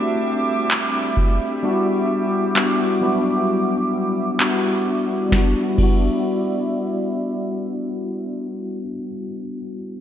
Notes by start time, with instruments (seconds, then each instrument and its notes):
Already playing: string section G3 D4 E5 D6, tine electric piano A3 C4 D4 E4 F#4 G4
0.71 clap
1.17 kick
1.63 tine electric piano G3 B3 D4 E4 F#4, string section D6
2.55 tine electric piano G3 B3 D4 E4 F#4, clap
3.01 tine electric piano F#3 B3 D4 E4 F#4
3.08 tine electric piano G3
4.39 tine electric piano G3 B3 D4 E4 F#4, clap
5.29 tine electric piano G3 B3 D4, string section E4 D5 E5, kick, snare
5.35 tine electric piano E4 F#4
5.75 tine electric piano G3 B3, kick, crash
5.79 tine electric piano D4 E4 F#4